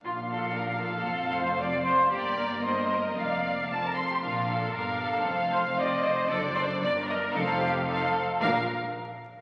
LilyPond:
<<
  \new Staff \with { instrumentName = "Violin section" } { \time 2/4 \key bes \major \tempo 4 = 115 f''2~ | f''2 | d''4 ees''4 | f''4 a''8 c'''8 |
f''4 f''4 | f''4 ees''4 | d''4 d''8 ees''8 | f''4 f''8 r8 |
f''8 r4. | }
  \new Staff \with { instrumentName = "Violin section" } { \time 2/4 \key bes \major f'8 a'8 bes'8 a'8~ | a'8 c''8 d''8 c''8 | g'8 bes'8 c''8 bes'8 | d''4~ d''16 bes'16 a'16 g'16 |
f'8 a'8 bes'8 a'8~ | a'8 c''8 d''8 c''8 | a'8 c''8 d''8 bes'8 | a'8 g'8 a'4 |
bes'8 r4. | }
  \new Staff \with { instrumentName = "Viola section" } { \time 2/4 \key bes \major << { f'2~ | f'2 | bes'2 | bes'4 a'8 r8 |
bes'4 bes'4 | c''2 | c''4 bes'4 | c''4 c''8 r8 |
bes'8 r4. | } \\ { d'2 | c'2 | bes2 | bes4 c'8 r8 |
d'4 d'4 | c'2 | d'4 d'4 | ees'4 ees'8 r8 |
d'8 r4. | } >> }
  \new Staff \with { instrumentName = "Cello section" } { \clef bass \time 2/4 \key bes \major bes,2 | f,2 | g,2 | f,4 f,8 r8 |
bes,4 g,4 | f,2 | fis,4 g,4 | f,4. r8 |
bes,8 r4. | }
  \new Staff \with { instrumentName = "Double bass section" } { \clef bass \time 2/4 \key bes \major bes,,2 | f,,2 | g,,2 | f,,4 f,,8 r8 |
bes,,4 g,,4 | f,,2 | fis,,4 g,,4 | f,,4. r8 |
bes,,8 r4. | }
>>